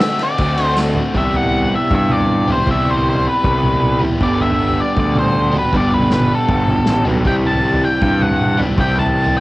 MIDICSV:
0, 0, Header, 1, 6, 480
1, 0, Start_track
1, 0, Tempo, 380228
1, 1467, Time_signature, 4, 2, 24, 8
1, 11868, End_track
2, 0, Start_track
2, 0, Title_t, "Lead electric guitar"
2, 0, Program_c, 0, 29
2, 0, Note_on_c, 0, 76, 95
2, 289, Note_on_c, 0, 74, 79
2, 296, Note_off_c, 0, 76, 0
2, 806, Note_off_c, 0, 74, 0
2, 806, Note_on_c, 0, 72, 79
2, 948, Note_off_c, 0, 72, 0
2, 1486, Note_on_c, 0, 76, 82
2, 1719, Note_off_c, 0, 76, 0
2, 1719, Note_on_c, 0, 78, 77
2, 2209, Note_off_c, 0, 78, 0
2, 2215, Note_on_c, 0, 76, 70
2, 2449, Note_off_c, 0, 76, 0
2, 2469, Note_on_c, 0, 76, 80
2, 2669, Note_on_c, 0, 74, 67
2, 2675, Note_off_c, 0, 76, 0
2, 3166, Note_off_c, 0, 74, 0
2, 3187, Note_on_c, 0, 72, 64
2, 3394, Note_off_c, 0, 72, 0
2, 3421, Note_on_c, 0, 76, 77
2, 3654, Note_off_c, 0, 76, 0
2, 3663, Note_on_c, 0, 72, 79
2, 3896, Note_off_c, 0, 72, 0
2, 3911, Note_on_c, 0, 72, 81
2, 4118, Note_off_c, 0, 72, 0
2, 4149, Note_on_c, 0, 71, 70
2, 5044, Note_off_c, 0, 71, 0
2, 5342, Note_on_c, 0, 74, 84
2, 5570, Note_on_c, 0, 76, 88
2, 5577, Note_off_c, 0, 74, 0
2, 6059, Note_off_c, 0, 76, 0
2, 6064, Note_on_c, 0, 74, 82
2, 6295, Note_off_c, 0, 74, 0
2, 6311, Note_on_c, 0, 74, 90
2, 6541, Note_off_c, 0, 74, 0
2, 6547, Note_on_c, 0, 72, 83
2, 7027, Note_off_c, 0, 72, 0
2, 7047, Note_on_c, 0, 71, 80
2, 7269, Note_off_c, 0, 71, 0
2, 7286, Note_on_c, 0, 74, 83
2, 7496, Note_off_c, 0, 74, 0
2, 7496, Note_on_c, 0, 71, 85
2, 7733, Note_off_c, 0, 71, 0
2, 7751, Note_on_c, 0, 71, 80
2, 7981, Note_off_c, 0, 71, 0
2, 8013, Note_on_c, 0, 69, 86
2, 8893, Note_off_c, 0, 69, 0
2, 9182, Note_on_c, 0, 79, 88
2, 9245, Note_off_c, 0, 79, 0
2, 9428, Note_on_c, 0, 81, 96
2, 9904, Note_off_c, 0, 81, 0
2, 9907, Note_on_c, 0, 79, 78
2, 10114, Note_off_c, 0, 79, 0
2, 10136, Note_on_c, 0, 79, 95
2, 10378, Note_off_c, 0, 79, 0
2, 10378, Note_on_c, 0, 78, 96
2, 10843, Note_off_c, 0, 78, 0
2, 11117, Note_on_c, 0, 79, 96
2, 11342, Note_off_c, 0, 79, 0
2, 11342, Note_on_c, 0, 81, 96
2, 11817, Note_off_c, 0, 81, 0
2, 11868, End_track
3, 0, Start_track
3, 0, Title_t, "Clean electric guitar"
3, 0, Program_c, 1, 27
3, 0, Note_on_c, 1, 50, 71
3, 0, Note_on_c, 1, 57, 64
3, 259, Note_on_c, 1, 66, 75
3, 262, Note_off_c, 1, 57, 0
3, 734, Note_off_c, 1, 50, 0
3, 749, Note_on_c, 1, 50, 75
3, 1454, Note_off_c, 1, 50, 0
3, 1464, Note_off_c, 1, 66, 0
3, 1481, Note_on_c, 1, 59, 87
3, 3131, Note_off_c, 1, 59, 0
3, 3136, Note_on_c, 1, 59, 76
3, 3386, Note_off_c, 1, 59, 0
3, 3391, Note_on_c, 1, 59, 84
3, 5071, Note_off_c, 1, 59, 0
3, 5076, Note_on_c, 1, 59, 73
3, 5311, Note_off_c, 1, 59, 0
3, 6982, Note_on_c, 1, 66, 88
3, 7216, Note_off_c, 1, 66, 0
3, 8907, Note_on_c, 1, 66, 69
3, 9137, Note_off_c, 1, 66, 0
3, 9194, Note_on_c, 1, 64, 88
3, 10822, Note_off_c, 1, 64, 0
3, 10837, Note_on_c, 1, 64, 81
3, 10849, Note_on_c, 1, 59, 76
3, 11058, Note_off_c, 1, 64, 0
3, 11064, Note_off_c, 1, 59, 0
3, 11116, Note_on_c, 1, 64, 89
3, 11868, Note_off_c, 1, 64, 0
3, 11868, End_track
4, 0, Start_track
4, 0, Title_t, "Overdriven electric guitar"
4, 0, Program_c, 2, 29
4, 0, Note_on_c, 2, 50, 64
4, 7, Note_on_c, 2, 57, 75
4, 19, Note_on_c, 2, 60, 76
4, 33, Note_on_c, 2, 66, 82
4, 453, Note_off_c, 2, 50, 0
4, 468, Note_on_c, 2, 50, 89
4, 473, Note_off_c, 2, 57, 0
4, 480, Note_off_c, 2, 60, 0
4, 488, Note_on_c, 2, 57, 95
4, 495, Note_on_c, 2, 60, 100
4, 498, Note_off_c, 2, 66, 0
4, 513, Note_on_c, 2, 66, 97
4, 697, Note_off_c, 2, 66, 0
4, 712, Note_on_c, 2, 66, 70
4, 731, Note_off_c, 2, 60, 0
4, 746, Note_off_c, 2, 57, 0
4, 746, Note_on_c, 2, 60, 70
4, 761, Note_on_c, 2, 57, 57
4, 952, Note_off_c, 2, 50, 0
4, 963, Note_off_c, 2, 57, 0
4, 968, Note_on_c, 2, 50, 76
4, 972, Note_off_c, 2, 60, 0
4, 978, Note_on_c, 2, 57, 67
4, 985, Note_off_c, 2, 66, 0
4, 987, Note_on_c, 2, 60, 78
4, 1000, Note_on_c, 2, 66, 72
4, 1184, Note_off_c, 2, 66, 0
4, 1199, Note_on_c, 2, 66, 78
4, 1209, Note_off_c, 2, 60, 0
4, 1224, Note_on_c, 2, 60, 66
4, 1231, Note_off_c, 2, 57, 0
4, 1246, Note_on_c, 2, 57, 64
4, 1426, Note_off_c, 2, 50, 0
4, 1426, Note_on_c, 2, 48, 71
4, 1431, Note_on_c, 2, 52, 84
4, 1439, Note_off_c, 2, 66, 0
4, 1443, Note_off_c, 2, 57, 0
4, 1448, Note_on_c, 2, 55, 77
4, 1451, Note_off_c, 2, 60, 0
4, 1456, Note_on_c, 2, 64, 77
4, 1466, Note_on_c, 2, 67, 82
4, 3117, Note_off_c, 2, 48, 0
4, 3119, Note_off_c, 2, 52, 0
4, 3122, Note_off_c, 2, 67, 0
4, 3127, Note_on_c, 2, 67, 71
4, 3128, Note_off_c, 2, 64, 0
4, 3144, Note_on_c, 2, 64, 80
4, 3147, Note_off_c, 2, 55, 0
4, 3152, Note_on_c, 2, 55, 63
4, 3160, Note_on_c, 2, 52, 66
4, 3182, Note_on_c, 2, 48, 66
4, 3330, Note_off_c, 2, 48, 0
4, 3345, Note_on_c, 2, 48, 71
4, 3348, Note_off_c, 2, 52, 0
4, 3364, Note_on_c, 2, 52, 79
4, 3369, Note_off_c, 2, 55, 0
4, 3371, Note_off_c, 2, 64, 0
4, 3374, Note_on_c, 2, 55, 78
4, 3386, Note_on_c, 2, 64, 74
4, 3388, Note_off_c, 2, 67, 0
4, 3393, Note_on_c, 2, 67, 73
4, 5034, Note_off_c, 2, 67, 0
4, 5036, Note_off_c, 2, 64, 0
4, 5039, Note_off_c, 2, 48, 0
4, 5039, Note_on_c, 2, 67, 78
4, 5048, Note_off_c, 2, 52, 0
4, 5051, Note_on_c, 2, 64, 72
4, 5057, Note_off_c, 2, 55, 0
4, 5062, Note_on_c, 2, 55, 75
4, 5077, Note_on_c, 2, 52, 71
4, 5090, Note_on_c, 2, 48, 63
4, 5290, Note_off_c, 2, 64, 0
4, 5293, Note_on_c, 2, 43, 80
4, 5302, Note_off_c, 2, 48, 0
4, 5303, Note_off_c, 2, 52, 0
4, 5307, Note_on_c, 2, 50, 84
4, 5320, Note_off_c, 2, 55, 0
4, 5320, Note_on_c, 2, 55, 78
4, 5325, Note_on_c, 2, 59, 77
4, 5333, Note_on_c, 2, 62, 84
4, 5338, Note_off_c, 2, 67, 0
4, 5343, Note_on_c, 2, 67, 88
4, 6957, Note_off_c, 2, 67, 0
4, 6962, Note_off_c, 2, 62, 0
4, 6962, Note_on_c, 2, 67, 81
4, 6972, Note_off_c, 2, 43, 0
4, 6977, Note_on_c, 2, 62, 84
4, 6979, Note_off_c, 2, 50, 0
4, 6981, Note_off_c, 2, 59, 0
4, 6986, Note_on_c, 2, 59, 72
4, 6991, Note_off_c, 2, 55, 0
4, 6996, Note_on_c, 2, 55, 74
4, 7006, Note_on_c, 2, 50, 63
4, 7015, Note_on_c, 2, 43, 62
4, 7192, Note_off_c, 2, 43, 0
4, 7207, Note_on_c, 2, 43, 82
4, 7208, Note_off_c, 2, 50, 0
4, 7213, Note_off_c, 2, 62, 0
4, 7223, Note_on_c, 2, 50, 73
4, 7228, Note_off_c, 2, 55, 0
4, 7233, Note_on_c, 2, 55, 77
4, 7235, Note_off_c, 2, 59, 0
4, 7240, Note_on_c, 2, 59, 93
4, 7247, Note_on_c, 2, 62, 81
4, 7252, Note_off_c, 2, 67, 0
4, 7257, Note_on_c, 2, 67, 74
4, 8886, Note_off_c, 2, 43, 0
4, 8893, Note_off_c, 2, 67, 0
4, 8894, Note_off_c, 2, 50, 0
4, 8897, Note_off_c, 2, 62, 0
4, 8898, Note_on_c, 2, 67, 75
4, 8912, Note_on_c, 2, 62, 79
4, 8917, Note_off_c, 2, 59, 0
4, 8922, Note_on_c, 2, 59, 69
4, 8924, Note_off_c, 2, 55, 0
4, 8929, Note_on_c, 2, 55, 73
4, 8942, Note_on_c, 2, 50, 70
4, 8943, Note_on_c, 2, 43, 61
4, 9127, Note_off_c, 2, 50, 0
4, 9132, Note_on_c, 2, 48, 89
4, 9139, Note_off_c, 2, 62, 0
4, 9142, Note_off_c, 2, 55, 0
4, 9147, Note_on_c, 2, 52, 84
4, 9149, Note_off_c, 2, 59, 0
4, 9154, Note_off_c, 2, 43, 0
4, 9154, Note_on_c, 2, 55, 82
4, 9168, Note_on_c, 2, 60, 81
4, 9177, Note_off_c, 2, 67, 0
4, 9182, Note_on_c, 2, 67, 92
4, 10805, Note_off_c, 2, 48, 0
4, 10809, Note_off_c, 2, 67, 0
4, 10812, Note_off_c, 2, 52, 0
4, 10815, Note_off_c, 2, 55, 0
4, 10825, Note_on_c, 2, 67, 78
4, 10832, Note_off_c, 2, 60, 0
4, 10837, Note_on_c, 2, 60, 77
4, 10848, Note_on_c, 2, 55, 70
4, 10865, Note_on_c, 2, 52, 73
4, 10872, Note_on_c, 2, 48, 69
4, 11045, Note_off_c, 2, 48, 0
4, 11050, Note_off_c, 2, 52, 0
4, 11052, Note_off_c, 2, 67, 0
4, 11060, Note_on_c, 2, 48, 76
4, 11064, Note_off_c, 2, 55, 0
4, 11065, Note_on_c, 2, 52, 76
4, 11082, Note_on_c, 2, 55, 80
4, 11089, Note_off_c, 2, 60, 0
4, 11094, Note_on_c, 2, 60, 85
4, 11102, Note_on_c, 2, 67, 93
4, 11868, Note_off_c, 2, 48, 0
4, 11868, Note_off_c, 2, 52, 0
4, 11868, Note_off_c, 2, 55, 0
4, 11868, Note_off_c, 2, 60, 0
4, 11868, Note_off_c, 2, 67, 0
4, 11868, End_track
5, 0, Start_track
5, 0, Title_t, "Picked electric bass"
5, 0, Program_c, 3, 34
5, 491, Note_on_c, 3, 38, 97
5, 1234, Note_off_c, 3, 38, 0
5, 1443, Note_on_c, 3, 36, 71
5, 2190, Note_off_c, 3, 36, 0
5, 2408, Note_on_c, 3, 43, 77
5, 3155, Note_off_c, 3, 43, 0
5, 3381, Note_on_c, 3, 36, 81
5, 4124, Note_off_c, 3, 36, 0
5, 4346, Note_on_c, 3, 36, 89
5, 5087, Note_off_c, 3, 36, 0
5, 5312, Note_on_c, 3, 31, 82
5, 6051, Note_off_c, 3, 31, 0
5, 6265, Note_on_c, 3, 38, 75
5, 7006, Note_off_c, 3, 38, 0
5, 7236, Note_on_c, 3, 31, 92
5, 7972, Note_off_c, 3, 31, 0
5, 8185, Note_on_c, 3, 31, 85
5, 8557, Note_off_c, 3, 31, 0
5, 8673, Note_on_c, 3, 33, 75
5, 8890, Note_off_c, 3, 33, 0
5, 8923, Note_on_c, 3, 35, 79
5, 9135, Note_off_c, 3, 35, 0
5, 9152, Note_on_c, 3, 36, 85
5, 9888, Note_off_c, 3, 36, 0
5, 10126, Note_on_c, 3, 43, 82
5, 10854, Note_off_c, 3, 43, 0
5, 11081, Note_on_c, 3, 36, 88
5, 11810, Note_off_c, 3, 36, 0
5, 11868, End_track
6, 0, Start_track
6, 0, Title_t, "Drums"
6, 6, Note_on_c, 9, 38, 115
6, 6, Note_on_c, 9, 51, 98
6, 15, Note_on_c, 9, 54, 98
6, 132, Note_off_c, 9, 38, 0
6, 132, Note_off_c, 9, 51, 0
6, 141, Note_off_c, 9, 54, 0
6, 243, Note_on_c, 9, 38, 34
6, 243, Note_on_c, 9, 51, 78
6, 369, Note_off_c, 9, 38, 0
6, 369, Note_off_c, 9, 51, 0
6, 483, Note_on_c, 9, 51, 94
6, 491, Note_on_c, 9, 36, 99
6, 609, Note_off_c, 9, 51, 0
6, 617, Note_off_c, 9, 36, 0
6, 728, Note_on_c, 9, 51, 81
6, 854, Note_off_c, 9, 51, 0
6, 969, Note_on_c, 9, 38, 62
6, 969, Note_on_c, 9, 54, 101
6, 1095, Note_off_c, 9, 38, 0
6, 1095, Note_off_c, 9, 54, 0
6, 1198, Note_on_c, 9, 43, 83
6, 1325, Note_off_c, 9, 43, 0
6, 1442, Note_on_c, 9, 43, 78
6, 1449, Note_on_c, 9, 36, 83
6, 1568, Note_off_c, 9, 43, 0
6, 1576, Note_off_c, 9, 36, 0
6, 1684, Note_on_c, 9, 43, 75
6, 1809, Note_off_c, 9, 43, 0
6, 1809, Note_on_c, 9, 43, 74
6, 1935, Note_off_c, 9, 43, 0
6, 2048, Note_on_c, 9, 43, 72
6, 2174, Note_off_c, 9, 43, 0
6, 2396, Note_on_c, 9, 43, 77
6, 2410, Note_on_c, 9, 36, 92
6, 2522, Note_off_c, 9, 43, 0
6, 2537, Note_off_c, 9, 36, 0
6, 2644, Note_on_c, 9, 43, 72
6, 2644, Note_on_c, 9, 47, 70
6, 2764, Note_off_c, 9, 43, 0
6, 2764, Note_on_c, 9, 43, 69
6, 2770, Note_off_c, 9, 47, 0
6, 2874, Note_on_c, 9, 47, 63
6, 2890, Note_off_c, 9, 43, 0
6, 3000, Note_off_c, 9, 47, 0
6, 3128, Note_on_c, 9, 43, 80
6, 3254, Note_off_c, 9, 43, 0
6, 3255, Note_on_c, 9, 43, 69
6, 3363, Note_off_c, 9, 43, 0
6, 3363, Note_on_c, 9, 43, 74
6, 3374, Note_on_c, 9, 36, 97
6, 3489, Note_off_c, 9, 43, 0
6, 3501, Note_off_c, 9, 36, 0
6, 3613, Note_on_c, 9, 43, 66
6, 3739, Note_off_c, 9, 43, 0
6, 3745, Note_on_c, 9, 43, 72
6, 3871, Note_off_c, 9, 43, 0
6, 3978, Note_on_c, 9, 43, 71
6, 4105, Note_off_c, 9, 43, 0
6, 4343, Note_on_c, 9, 43, 73
6, 4347, Note_on_c, 9, 36, 100
6, 4469, Note_off_c, 9, 43, 0
6, 4473, Note_off_c, 9, 36, 0
6, 4587, Note_on_c, 9, 43, 74
6, 4587, Note_on_c, 9, 47, 70
6, 4713, Note_off_c, 9, 43, 0
6, 4713, Note_off_c, 9, 47, 0
6, 4716, Note_on_c, 9, 43, 79
6, 4840, Note_on_c, 9, 47, 62
6, 4842, Note_off_c, 9, 43, 0
6, 4966, Note_off_c, 9, 47, 0
6, 5078, Note_on_c, 9, 43, 76
6, 5200, Note_off_c, 9, 43, 0
6, 5200, Note_on_c, 9, 43, 76
6, 5309, Note_off_c, 9, 43, 0
6, 5309, Note_on_c, 9, 43, 74
6, 5312, Note_on_c, 9, 36, 105
6, 5435, Note_off_c, 9, 43, 0
6, 5439, Note_off_c, 9, 36, 0
6, 5560, Note_on_c, 9, 43, 75
6, 5680, Note_off_c, 9, 43, 0
6, 5680, Note_on_c, 9, 43, 72
6, 5806, Note_off_c, 9, 43, 0
6, 5915, Note_on_c, 9, 43, 84
6, 6041, Note_off_c, 9, 43, 0
6, 6262, Note_on_c, 9, 43, 73
6, 6270, Note_on_c, 9, 36, 95
6, 6388, Note_off_c, 9, 43, 0
6, 6396, Note_off_c, 9, 36, 0
6, 6506, Note_on_c, 9, 43, 78
6, 6506, Note_on_c, 9, 47, 75
6, 6621, Note_off_c, 9, 43, 0
6, 6621, Note_on_c, 9, 43, 81
6, 6632, Note_off_c, 9, 47, 0
6, 6745, Note_on_c, 9, 47, 67
6, 6747, Note_off_c, 9, 43, 0
6, 6871, Note_off_c, 9, 47, 0
6, 6987, Note_on_c, 9, 43, 67
6, 7113, Note_off_c, 9, 43, 0
6, 7113, Note_on_c, 9, 43, 71
6, 7226, Note_off_c, 9, 43, 0
6, 7226, Note_on_c, 9, 43, 75
6, 7230, Note_on_c, 9, 36, 98
6, 7353, Note_off_c, 9, 43, 0
6, 7357, Note_off_c, 9, 36, 0
6, 7471, Note_on_c, 9, 43, 72
6, 7582, Note_off_c, 9, 43, 0
6, 7582, Note_on_c, 9, 43, 75
6, 7582, Note_on_c, 9, 47, 69
6, 7705, Note_on_c, 9, 38, 76
6, 7708, Note_off_c, 9, 43, 0
6, 7708, Note_off_c, 9, 47, 0
6, 7827, Note_on_c, 9, 47, 77
6, 7831, Note_off_c, 9, 38, 0
6, 7954, Note_off_c, 9, 47, 0
6, 8180, Note_on_c, 9, 43, 81
6, 8187, Note_on_c, 9, 36, 96
6, 8306, Note_off_c, 9, 43, 0
6, 8313, Note_off_c, 9, 36, 0
6, 8424, Note_on_c, 9, 43, 72
6, 8424, Note_on_c, 9, 47, 68
6, 8543, Note_off_c, 9, 43, 0
6, 8543, Note_on_c, 9, 43, 75
6, 8550, Note_off_c, 9, 47, 0
6, 8657, Note_on_c, 9, 38, 73
6, 8669, Note_off_c, 9, 43, 0
6, 8784, Note_off_c, 9, 38, 0
6, 8905, Note_on_c, 9, 43, 74
6, 9030, Note_off_c, 9, 43, 0
6, 9030, Note_on_c, 9, 43, 73
6, 9155, Note_on_c, 9, 36, 99
6, 9156, Note_off_c, 9, 43, 0
6, 9162, Note_on_c, 9, 43, 75
6, 9282, Note_off_c, 9, 36, 0
6, 9288, Note_off_c, 9, 43, 0
6, 9406, Note_on_c, 9, 43, 75
6, 9532, Note_off_c, 9, 43, 0
6, 9533, Note_on_c, 9, 43, 73
6, 9659, Note_off_c, 9, 43, 0
6, 9761, Note_on_c, 9, 43, 77
6, 9888, Note_off_c, 9, 43, 0
6, 10121, Note_on_c, 9, 36, 102
6, 10132, Note_on_c, 9, 43, 73
6, 10247, Note_off_c, 9, 36, 0
6, 10258, Note_off_c, 9, 43, 0
6, 10365, Note_on_c, 9, 43, 74
6, 10365, Note_on_c, 9, 47, 65
6, 10491, Note_off_c, 9, 43, 0
6, 10491, Note_off_c, 9, 47, 0
6, 10494, Note_on_c, 9, 43, 72
6, 10612, Note_on_c, 9, 47, 66
6, 10620, Note_off_c, 9, 43, 0
6, 10738, Note_off_c, 9, 47, 0
6, 10846, Note_on_c, 9, 43, 74
6, 10967, Note_off_c, 9, 43, 0
6, 10967, Note_on_c, 9, 43, 73
6, 11083, Note_on_c, 9, 36, 102
6, 11085, Note_off_c, 9, 43, 0
6, 11085, Note_on_c, 9, 43, 78
6, 11209, Note_off_c, 9, 36, 0
6, 11211, Note_off_c, 9, 43, 0
6, 11336, Note_on_c, 9, 43, 73
6, 11439, Note_off_c, 9, 43, 0
6, 11439, Note_on_c, 9, 43, 76
6, 11565, Note_off_c, 9, 43, 0
6, 11692, Note_on_c, 9, 43, 84
6, 11818, Note_off_c, 9, 43, 0
6, 11868, End_track
0, 0, End_of_file